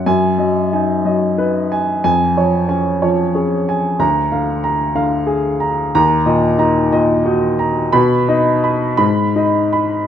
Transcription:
<<
  \new Staff \with { instrumentName = "Upright piano" } { \time 6/8 \key cis \mixolydian \tempo 4. = 61 << { gis''4 r2 | gis''4 r2 | \key ees \minor bes''4 r2 | bes''4 r2 |
b''4 r8 ces'''4 r8 | } \\ { r8 dis''8 gis''8 dis''8 b'8 gis''8 | r8 cis''8 gis''8 cis''8 gis'8 gis''8 | r8 f''8 bes''8 f''8 aes'8 bes''8 | r8 ees''8 bes''8 ees''8 ges'8 bes''8 |
r8 dis''8 b''8 r8 ees''8 ces'''8 | } >> }
  \new Staff \with { instrumentName = "Upright piano" } { \clef bass \time 6/8 \key cis \mixolydian fis,8 fis8 dis'8 fis8 dis'4 | eis,8 eis8 cis'8 eis8 cis'4 | \key ees \minor d,8 d4 d4 r8 | ees,8 bes,8 ees'8 bes,8 ees'4 |
b,8 dis'4 aes,8 ees'4 | }
>>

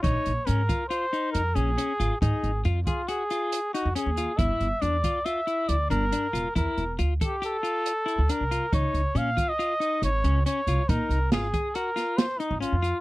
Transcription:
<<
  \new Staff \with { instrumentName = "Trumpet" } { \time 5/4 \key bes \minor \tempo 4 = 138 des''4 bes'4 c''4 bes'8 aes'4. | aes'4 r8 f'8 aes'4. ges'8 aes'4 | e''4 d''4 e''4 d''8 bes'4. | bes'4 r8 g'8 a'2 bes'4 |
des''4 f''8. ees''4~ ees''16 des''4 des''4 | bes'4 aes'4 bes'4 c''8 ees'8 f'4 | }
  \new Staff \with { instrumentName = "Clean electric guitar" } { \time 5/4 \key bes \minor ees'4 des'8 f'8 f'8 ees'4 des'8 des'8 f'8 | ees'4 f'8 aes'8 ges'8 f'4 ees'8 des'8 f'8 | e'4 d'8 f'8 f'8 e'4 d'8 d'8 f'8 | e'4 f'8 a'8 g'8 f'4 e'8 d'8 f'8 |
ees'4 des'8 f'8 f'8 ees'4 des'8 des'8 f'8 | ees'4 f'8 aes'8 ges'8 f'4 ees'8 des'8 f'8 | }
  \new Staff \with { instrumentName = "Upright bass" } { \clef bass \time 5/4 \key bes \minor bes,,16 r16 bes,,16 r16 aes,8 r4. f,8 bes,,8 r8 aes,,16 r16 | aes,16 r16 aes,,8 f,8 r2 r16 f,16 r16 ees,8 r16 | g,,16 r16 g,,16 r16 e,8 r4. d,8 g,,8 r8 e,,16 r16 | e,16 r16 e,,8 d,8 r2 r16 d,16 r16 c,8 r16 |
des,16 r16 des,16 r16 bes,8 r4. aes,,8 des,8 r8 c,16 r16 | bes,16 r16 c,8 aes,,8 r2 r16 aes,,16 r16 f,8 r16 | }
  \new DrumStaff \with { instrumentName = "Drums" } \drummode { \time 5/4 <hh bd>8 hh8 hh8 <hh bd>8 hh8 hh8 hh8 hh8 hh8 hh8 | <hh bd>8 hh8 hh8 <hh bd>8 hh8 hh8 hh8 hh8 hh8 hh8 | <hh bd>8 hh8 hh8 <hh bd>8 hh8 hh8 hh8 hh8 hh8 hh8 | <hh bd>8 hh8 hh8 <hh bd>8 hh8 hh8 hh8 hh8 hh8 hh8 |
<hh bd>8 hh8 hh8 <hh bd>8 hh8 hh8 hh8 hh8 hh8 hh8 | <hh bd>8 hh8 <hh sn>8 <hh bd>8 hh8 <hh sn>8 <hh sn>8 hh8 hh8 hh8 | }
>>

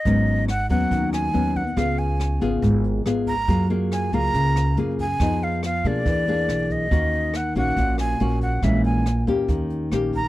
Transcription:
<<
  \new Staff \with { instrumentName = "Flute" } { \time 4/4 \key gis \minor \tempo 4 = 140 dis''4 fis''8 fis''4 gis''4 fis''8 | eis''8 gis''4 r2 ais''8~ | ais''8 r8 gis''8 ais''4. r8 gis''8~ | gis''8 f''8 f''8 d''2 dis''8~ |
dis''4 fis''8 fis''4 gis''4 fis''8 | e''8 gis''4 r2 ais''8 | }
  \new Staff \with { instrumentName = "Nylon-string guitar" } { \time 4/4 \key gis \minor << { <fis b cis'>4 r8 <fis b cis'>4. <fis b cis'>8 r8 | <b eis' gis'>4. <b eis' gis'>4. <b eis' gis'>8 r8 | <ais eis' gis'>8 <ais eis' gis'>4 <ais eis' gis'>4. <ais eis' gis'>8 r8 | <ces' ees' aes'>4 r8 <ais d' aes'>4 <ais d' gis'>4. |
<ais cis' fis'>4 r8 <ais cis' fis'>4. <ais cis' fis'>4 | <e gis cis'>4 r8 <ais cis' g'>4. <ais cis' g'>8 r8 | } \\ { gis,2 dis2 | cis2 gis,2 | fis2 cis2 | f2 e2 |
dis2 ais,2 | ais,2 dis2 | } >> }
  \new Staff \with { instrumentName = "Upright bass" } { \clef bass \time 4/4 \key gis \minor gis,,4. dis,8 dis,4 dis,4 | cis,4. gis,,8 gis,,4 gis,,4 | fis,4. cis,8 cis,4 fis,4 | f,4. ces8 e,4 b,,4 |
dis,4. ais,,8 ais,,4 ais,,4 | ais,,4. e,8 dis,4 ais,,4 | }
  \new DrumStaff \with { instrumentName = "Drums" } \drummode { \time 4/4 <hh bd>8 hh8 <hh ss>8 <hh bd>8 <hh bd>8 <hh ss>8 hh8 <hh bd>8 | <hh bd ss>8 hh8 <hh ss>8 <hh bd>8 <hh bd>8 hh8 <hh ss>8 <hh bd>8 | <hh bd>8 hh8 <hh ss>8 <hh bd>8 <hh bd>8 <hh ss>8 hh8 <hh bd>8 | <hh bd ss>8 hh8 <hh ss>8 <hh bd>8 <hh bd>8 hh8 <hh ss>8 <hh bd>8 |
<hh bd>8 hh8 <hh ss>8 <hh bd>8 <hh bd>8 <hh ss>8 hh8 <hh bd>8 | <hh bd ss>8 hh8 <hh ss>8 <hh bd>8 <hh bd>8 hh8 <hh ss>8 <hh bd>8 | }
>>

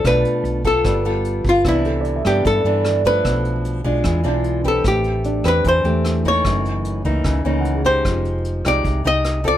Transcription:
<<
  \new Staff \with { instrumentName = "Hollow-body jazz guitar" } { \time 4/4 \key g \mixolydian \tempo 4 = 150 b'4. a'2 f'8 | \key c \major e'4. g'8 a'4. b'8~ | b'4. r2 a'8 | g'4. b'8 c''4. des''8~ |
des''4. r2 c''8~ | c''4. d''4 ees''4 d''8 | }
  \new Staff \with { instrumentName = "Grand piano" } { \time 4/4 \key g \mixolydian a'8 r4. b'2~ | \key c \major b'8 a'16 d''16 e''2 a'4~ | a'8 r2 d'4.~ | d'8 r8 d'4. a4.~ |
a8 r2 cis'16 fis''16 gis'4~ | gis'4 r2. | }
  \new Staff \with { instrumentName = "Nylon-string guitar" } { \time 4/4 \key g \mixolydian << { <a d' f'>4. <b f' a'>4 <b f' a'>4. | \key c \major <e b d'>4. <e b d'>4 <e b d'>4 <f a d'>8~ | <f a d'>4. <aes d' f'>4 <gis d' f'>4 <c' g' b'>8~ | <c' g' b'>4. <c' g' b'>4 <c' g'>4 <e bes ees'>8~ |
<e bes ees'>4. <e ais dis'>4 <e ais dis'>4 <gis dis' g'>8~ | <gis dis' g'>4. <aes ees' g'>4 <aes ees' g'>4 <c' f' a'>8 | } \\ { b,2 g2 | c2 g,2 | b,2 e2 | a2 e2 |
fis,2 cis2 | f2 c2 | } >> }
  \new Staff \with { instrumentName = "Fingered electric bass" } { \clef bass \time 4/4 \key g \mixolydian b,,8 r8 b,,4 g,,4. g,,8 | \key c \major c,4. g,8 g,8 g,4. | b,,4. b,,8 e,8 b,,4. | a,,4. e,8 e,8 e,4. |
fis,,4. cis,8 cis,8 cis,4. | f,,4. c,8 c,8 c,4. | }
  \new DrumStaff \with { instrumentName = "Drums" } \drummode { \time 4/4 <hh bd ss>8 hh8 hh8 <hh bd>8 <hh bd ss>8 hh8 hh8 <hh bd>8 | <hh bd ss>8 hh8 hh8 <hh bd ss>8 <hh bd>8 hh8 <hh ss>8 <hh bd>8 | <hh bd ss>8 hh8 hh8 <hh bd>8 <hh bd ss>8 hh8 hh8 <hh bd>8 | <hh bd ss>8 hh8 hh8 <hh bd ss>8 <hh bd>8 hh8 <hh ss>8 <hh bd>8 |
<hh bd ss>8 hh8 hh8 <hh bd>8 <hh bd ss>8 hh8 hh8 <hh bd>8 | <hh bd ss>8 hh8 hh8 <hh bd ss>8 <hh bd>8 hh8 <hh ss>8 <hh bd>8 | }
>>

